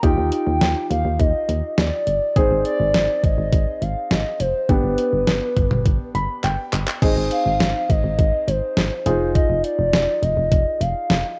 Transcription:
0.03 D#2 D#4 F4 G4 G5, kick, closed hi-hat
0.18 D#2
0.32 G5, closed hi-hat
0.47 D#2
0.61 D#2, snare, closed hi-hat
0.91 D#2 F5, closed hi-hat
1.05 D#2
1.20 D#2 D#5, kick, closed hi-hat
1.49 D#2, closed hi-hat
1.78 D#2 D5, snare, closed hi-hat
2.07 G1, closed hi-hat
2.36 G#1 C4 D#4 G#4 C5, kick, closed hi-hat
2.51 G#1
2.65 D5, closed hi-hat
2.80 G#1
2.94 G#1, snare, closed hi-hat
3.24 G#1 D#5, kick, closed hi-hat
3.38 G#1
3.53 G#1, kick, closed hi-hat
3.82 G#1 F5, closed hi-hat
4.11 G#1 D#5, snare, closed hi-hat
4.40 F1 C5, closed hi-hat
4.69 G1 B3 D4 G4 B4, kick, closed hi-hat
4.84 G1
4.98 closed hi-hat
5.13 G1
5.27 G1, snare, closed hi-hat
5.57 G1, kick, closed hi-hat, mid tom
5.71 G1, mid tom
5.86 G1, kick, closed hi-hat
6.15 G1 B5, closed hi-hat
6.44 G1 G5, clap, closed hi-hat
6.73 G1, clap, closed hi-hat
6.88 clap
7.02 G#1 C4 D#4 G#4 D#5, kick, closed hi-hat, crash
7.17 G#1
7.31 F5, closed hi-hat
7.46 G#1
7.60 G#1, snare, closed hi-hat
7.90 G#1 D#5, kick, closed hi-hat
8.04 G#1
8.19 G#1, kick, closed hi-hat
8.48 G#1 C5, closed hi-hat
8.77 G#1, snare, closed hi-hat
9.06 F1 D#4 F4 G#4 C5, closed hi-hat
9.35 D#5, kick, closed hi-hat
9.50 F1
9.64 D5, closed hi-hat
9.79 F1
9.93 F1, snare, closed hi-hat
10.23 F1 D#5, closed hi-hat
10.37 F1
10.52 F1, kick, closed hi-hat
10.81 F1 F5, closed hi-hat
11.10 F1, snare, closed hi-hat

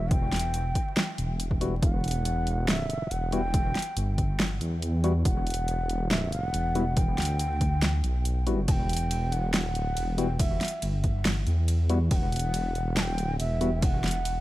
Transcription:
Already playing: E1 E5
0.11 G5, kick, closed hi-hat
0.32 E1, snare, closed hi-hat
0.36 closed hi-hat
0.39 closed hi-hat
0.54 closed hi-hat
0.75 kick, closed hi-hat
0.97 snare, closed hi-hat
1.18 E1, closed hi-hat
1.40 closed hi-hat
1.51 kick
1.61 E1 G3 B3 E4 F#4, closed hi-hat
1.82 E1 F#5, kick, closed hi-hat
2.04 closed hi-hat
2.08 closed hi-hat
2.11 closed hi-hat
2.25 closed hi-hat
2.47 closed hi-hat
2.68 E5, snare, closed hi-hat
2.90 closed hi-hat
3.11 E1 F#5, closed hi-hat
3.32 G3 B3 E4 F#4 G5, closed hi-hat
3.54 kick, closed hi-hat
3.75 snare, closed hi-hat
3.79 closed hi-hat
3.82 closed hi-hat
3.97 G1, closed hi-hat
4.18 kick, closed hi-hat
4.40 snare, closed hi-hat
4.61 E2, closed hi-hat
4.82 closed hi-hat
5.04 G3 B3 E4 F#4, closed hi-hat
5.25 E1 F#5, kick, closed hi-hat
5.47 closed hi-hat
5.50 closed hi-hat
5.54 closed hi-hat
5.68 closed hi-hat
5.90 closed hi-hat
6.11 E5, snare, closed hi-hat
6.32 F5, closed hi-hat
6.44 F#5
6.54 E1, closed hi-hat
6.75 G3 B3 E4 F#4, closed hi-hat
6.97 G5, kick, closed hi-hat
7.18 D2, snare, closed hi-hat
7.22 closed hi-hat
7.25 closed hi-hat
7.39 closed hi-hat
7.61 kick, closed hi-hat
7.82 snare, closed hi-hat
8.04 B1, closed hi-hat
8.25 closed hi-hat
8.47 G3 B3 E4 F#4, closed hi-hat
8.68 E1 G5 A5, kick, closed hi-hat, ride
8.89 closed hi-hat
8.93 closed hi-hat
8.97 closed hi-hat
9.11 closed hi-hat, ride
9.32 F#5, closed hi-hat
9.53 D#1 G5, snare, closed hi-hat, ride
9.58 F#5
9.75 closed hi-hat
9.83 D1
9.97 E1, closed hi-hat, ride
10.18 G3 B3 E4 F#4 G5, closed hi-hat
10.39 E5, kick, closed hi-hat, ride
10.61 snare, closed hi-hat
10.65 closed hi-hat
10.68 closed hi-hat
10.82 G1, closed hi-hat, ride
11.04 kick, closed hi-hat
11.25 snare, closed hi-hat, ride
11.47 E2, closed hi-hat
11.68 closed hi-hat, ride
11.89 G3 B3 E4 F#4, closed hi-hat
12.11 E1 G5, kick, closed hi-hat, ride
12.15 F#5
12.32 closed hi-hat
12.36 closed hi-hat
12.39 closed hi-hat
12.54 closed hi-hat, ride
12.75 closed hi-hat
12.97 D#1 A5, snare, closed hi-hat, ride
13.01 G5
13.18 closed hi-hat
13.26 D1
13.40 E1 E5, closed hi-hat, ride
13.61 G3 B3 E4 F#4, closed hi-hat
13.82 F#5, kick, closed hi-hat, ride
14.04 E1, snare, closed hi-hat
14.08 closed hi-hat
14.11 closed hi-hat
14.25 closed hi-hat, ride

